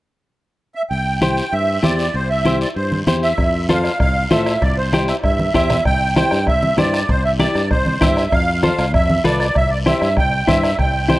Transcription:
0.75 E5
0.90 C2 G5, long guiro
1.22 E4 G4 C5 G5, high conga, short guiro
1.37 short guiro
1.53 G2 E5, long guiro
1.83 E2 E4 G4 C5 D5, high conga, short guiro
1.99 short guiro
2.14 C2 C5, long guiro
2.30 E5
2.45 E4 G4 C5, high conga, short guiro
2.61 D5, short guiro
2.76 G2 C5, long guiro
2.92 high conga
3.07 E2 E4 G4 C5, high conga, short guiro
3.22 E5, short guiro
3.38 F2, bombo low, bombo rim, long guiro
3.69 F4 A4 C5 F5, bombo rim, high conga, short guiro
3.84 bombo rim, short guiro
4.00 C2 F5, bombo low, bombo rim, long guiro
4.31 A2 F4 A4 C5 E5, bombo rim, high conga, short guiro
4.46 bombo rim, short guiro
4.62 C2 D5, bombo low, bombo rim, long guiro
4.77 C5
4.93 E4 G4 C5, bombo rim, high conga, short guiro
5.08 E5, bombo rim, short guiro
5.23 G2 E5, bombo low, bombo rim, long guiro
5.39 high conga
5.54 E2 E4 G4 C5 E5, bombo low, bombo rim, short guiro
5.70 bombo rim, low conga, short guiro
5.85 C2 G5, bombo low, bombo rim, long guiro
6.16 E4 G4 C5 G5, bombo rim, high conga, short guiro
6.31 G2, bombo rim, short guiro
6.47 C2 E5, bombo low, bombo rim, long guiro
6.63 high conga
6.78 G2 E4 G4 C5 D5, bombo rim, high conga, short guiro
6.94 bombo rim, short guiro
7.09 C2 C5, bombo low, bombo rim, long guiro
7.25 E5
7.39 E4 G4 D5, bombo rim, high conga, short guiro
7.55 G2, bombo rim, short guiro
7.71 C2 C5, bombo low, bombo rim, long guiro
7.86 high conga
8.01 G2 E4 G4 C5 E5, bombo low, bombo rim, high conga, short guiro
8.17 bombo rim, short guiro
8.32 F2 F5, bombo low, bombo rim, long guiro
8.63 F4 A4 C5 F5, bombo rim, high conga, short guiro
8.78 C2, bombo rim, short guiro
8.94 F2 E5, bombo low, bombo rim, long guiro
9.10 high conga
9.24 C2 F4 A4 B4 D5, bombo rim, high conga, short guiro
9.40 bombo rim, short guiro
9.55 C2 E5, bombo low, bombo rim, long guiro
9.71 D5
9.86 E4 G4 C5 E5, bombo rim, high conga, short guiro
10.01 G2, bombo rim, short guiro
10.17 C2 G5, bombo low, bombo rim, long guiro
10.47 G2 E4 G4 C5 E5, bombo low, bombo rim, high conga, short guiro
10.63 bombo rim, short guiro
10.79 C2 G5, bombo low, bombo rim, long guiro
11.08 E4 G4 C5 G5, bombo rim, high conga, short guiro

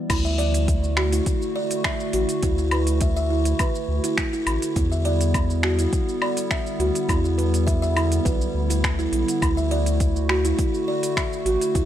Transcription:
0.10 D2 D3 A3 E4 F#4, kick, open hi-hat, crash, low woodblock, shaker
0.25 E5, shaker
0.38 D5, open hi-hat
0.54 open hi-hat, shaker
0.68 kick, open hi-hat, shaker
0.84 shaker
0.97 F#4, finger snap, low woodblock
1.13 E4, open hi-hat, shaker
1.26 kick, open hi-hat, shaker
1.42 shaker
1.56 D5
1.71 open hi-hat, shaker
1.84 E5, finger snap, kick, low woodblock, shaker
2.00 shaker
2.13 A1 F#4, open hi-hat
2.29 open hi-hat, shaker
2.43 D2 E4, kick, open hi-hat, shaker
2.58 E4, shaker
2.71 B4, open hi-hat, low woodblock
2.87 open hi-hat, shaker
3.01 E5, kick, open hi-hat, shaker
3.17 E5, shaker
3.30 E4
3.45 open hi-hat, shaker
3.59 B4, kick, open hi-hat, low woodblock, shaker
3.75 shaker
3.88 D2
4.04 E4, open hi-hat, shaker
4.18 finger snap, kick, shaker
4.33 E4, shaker
4.47 A1, open hi-hat, low woodblock
4.62 open hi-hat, shaker
4.76 E2 G3 B3 E4, kick, open hi-hat, shaker
4.92 E5, shaker
5.05 D5, open hi-hat
5.21 open hi-hat, shaker
5.34 kick, open hi-hat, low woodblock, shaker
5.50 shaker
5.63 F#4, finger snap
5.79 E4, open hi-hat, shaker
5.93 kick, open hi-hat, shaker
6.09 shaker
6.22 D5, low woodblock
6.37 open hi-hat, shaker
6.51 E5, finger snap, kick, shaker
6.67 shaker
6.79 D2 F#4, open hi-hat
6.95 open hi-hat, shaker
7.09 E2 E4, kick, open hi-hat, low woodblock, shaker
7.24 E4, shaker
7.38 B4, open hi-hat
7.54 open hi-hat, shaker
7.67 E5, kick, open hi-hat, shaker
7.82 E5, shaker
7.96 E4, open hi-hat, low woodblock
8.12 open hi-hat, shaker
8.25 B1 B4, kick, open hi-hat, shaker
8.41 shaker
8.54 D2
8.70 E4, open hi-hat, shaker
8.84 finger snap, kick, low woodblock, shaker
8.99 E4, shaker
9.12 B1, open hi-hat
9.28 open hi-hat, shaker
9.41 D2 A3 E4 F#4, kick, open hi-hat, low woodblock, shaker
9.57 E5, shaker
9.71 D5, open hi-hat
9.86 open hi-hat, shaker
10.00 kick, open hi-hat, shaker
10.16 shaker
10.29 F#4, finger snap, low woodblock
10.45 E4, open hi-hat, shaker
10.59 kick, open hi-hat, shaker
10.74 shaker
10.88 D5
11.03 open hi-hat, shaker
11.17 E5, finger snap, kick, low woodblock, shaker
11.33 shaker
11.45 A1 F#4, open hi-hat
11.61 open hi-hat, shaker
11.75 D2 E4, kick, open hi-hat, shaker

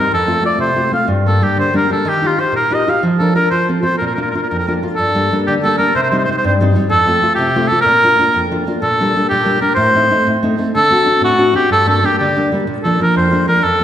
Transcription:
Already playing: A#4
0.11 F2 A4
0.27 A3 C4 F4
0.42 A3 C4 F4 D5
0.58 C3 C5
0.76 A3 C4 F4
0.92 A3 C4 F4 F5
1.08 G2
1.26 G3 A#3 D4 A4
1.41 G3 A#3 D4 G4
1.56 D3 C5
1.74 G3 A#3 D4 A#4
1.90 G3 A#3 D4 A4
2.05 D#3 G4
2.22 D#4 F4 G4
2.26 F4
2.38 D#4 F4 G4 C5
2.52 A#2 A#4
2.70 D#4 F4 G4 D#5
2.87 D#4 F4 G4 F5
3.03 F3
3.19 D4 F4 A4 A#4
3.35 D4 F4 A#4
3.51 F3 C5
3.69 C4 F4 A4
3.82 C4 F4 A4 C5
3.98 A#2 A#4
4.07 A#4
4.15 A#3 D4 F4 A#4
4.22 A#4
4.31 A#3 A#4
4.35 D4 F4 A#4
4.42 A#4
4.49 F2 A#4
4.58 A#4
4.67 A#3 D4 F4 A#4
4.83 A#3 D4 F4
4.96 G2 A4
5.15 G3 A#3 D4
5.32 G3 A#3 D4
5.47 D3 G4
5.63 G3 A#3 D4 A4
5.78 G3 A#3 D4 A#4
5.95 C3 C5
6.03 C5
6.10 G3 C4 D#4 C5
6.18 C5
6.25 C5
6.29 G3 C4 D#4 C5
6.37 C5
6.44 G2 C5
6.60 G3 C4 D#4
6.75 G3 C4 D#4
6.90 F2 A4
7.07 A3 C4 F4
7.22 A3 C4 F4
7.35 C3 G4
7.56 A3 C4 F4
7.68 A3 A4
7.72 C4 F4
7.81 A#4
7.85 A#2
8.04 A#3 D4 F4
8.18 A#3 D4 F4
8.34 F2
8.51 A#3 D4 F4
8.67 A#3 D4 F4
8.82 A#2 A4
9.00 G3 A#3 D4
9.16 G3 A#3 D4
9.29 A#2 G4
9.45 G3 A#3 D4
9.61 G3 A#3 D4 A#4
9.75 A2 C5
9.95 A3 C4 D#4
10.10 A3 C4 D#4
10.27 A2
10.43 A3 C4 D#4
10.58 A3 C4 D#4
10.75 D3 A4
10.90 C4 D4 F#4
11.06 C4 D4 F#4
11.21 A2 F#4
11.38 C4 D4 F#4
11.53 C4 D4 F#4 G4
11.70 G2 A4
11.86 G3 A#3 D4 A4
12.03 G3 A#3 D4 G4
12.18 D3 G4
12.36 G3 A#3 D4
12.52 G3 A#3 D4
12.67 A#2
12.83 F3 A#3 D4 A4
13.00 F3 A#3 D4 A#4
13.16 F2 C5
13.31 F3 A#3 D4
13.48 F3 A#3 D4 A#4
13.62 F2 A4
13.79 F3 A3 C4

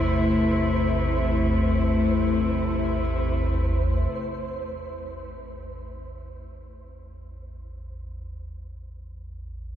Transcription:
Already playing: A1 E2 C3 A3 E4 C5
4.12 A1 E2

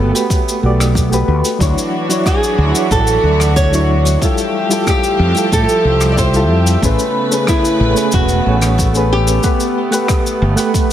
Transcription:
Already playing: G1 A3 B3 F#4 G4 B4
0.12 A3 F#4 G4 B4, closed hi-hat, cabasa
0.30 kick, closed hi-hat, cabasa
0.49 cabasa
0.62 B1 A3 F#4 G4 D5
0.80 cross-stick, closed hi-hat, cabasa
0.95 kick, closed hi-hat, cabasa
1.10 A3 F#4 G4, cabasa
1.14 B4
1.28 D2
1.45 closed hi-hat, cabasa
1.58 D2 E3 F#3 D4 E4 F#4, kick, closed hi-hat, cabasa
1.62 C#5
1.78 cabasa
2.09 F#3 D4 E4 C#5, closed hi-hat, cabasa
2.26 G#4, kick, cross-stick, closed hi-hat, cabasa
2.43 cabasa
2.58 D2
2.74 F#3 D4 E4 C#5, closed hi-hat, cabasa
2.91 A1 A4, kick, closed hi-hat, cabasa
3.07 cabasa
3.23 D2 F#3 D4 E4 D5
3.40 cross-stick, closed hi-hat, cabasa
3.56 C#5, kick, closed hi-hat, cabasa
3.71 F#3 D4 E4 C#5, cabasa
4.05 closed hi-hat, cabasa
4.21 F3 G3 A3 E4 F4 G4 A4 E5, kick, closed hi-hat, cabasa
4.38 cabasa
4.69 G3 E4 F4 A4, closed hi-hat, cabasa
4.87 G4, kick, cross-stick, closed hi-hat, cabasa
5.04 cabasa
5.19 F2
5.34 G3 E4 F4 A4, closed hi-hat, cabasa
5.52 A2 A4, kick, closed hi-hat, cabasa
5.69 cabasa
5.84 C2 G3 E4 F4 C5
6.01 cross-stick, closed hi-hat, cabasa
6.12 D5
6.17 C5, kick, closed hi-hat, cabasa
6.33 G3 E4 F4 A4, cabasa
6.50 F2
6.67 closed hi-hat, cabasa
6.81 A1 C#3 A3 B3 C#4 G#4 B4, kick, closed hi-hat, cabasa
6.99 cabasa
7.31 A3 C#4 G#4 B4, closed hi-hat, cabasa
7.47 E4, kick, cross-stick, closed hi-hat, cabasa
7.65 cabasa
7.80 A1
7.95 A3 C#4 G#4 B4, closed hi-hat, cabasa
8.12 E1 F#4, kick, closed hi-hat, cabasa
8.29 cabasa
8.45 A1 A3 C#4 G#4 C#5
8.61 cross-stick, closed hi-hat, cabasa
8.78 kick, closed hi-hat, cabasa
8.93 A3 C#4 G#4, cabasa
8.97 B4
9.13 G4
9.27 closed hi-hat, cabasa
9.42 A3 G4 B4 F#5, kick, closed hi-hat, cabasa
9.60 cabasa
9.91 A3 G4 B4 F#5, closed hi-hat, cabasa
10.08 kick, cross-stick, closed hi-hat, cabasa
10.26 cabasa
10.42 G1
10.56 A3 G4 B4 F#5, closed hi-hat, cabasa
10.74 kick, closed hi-hat, cabasa

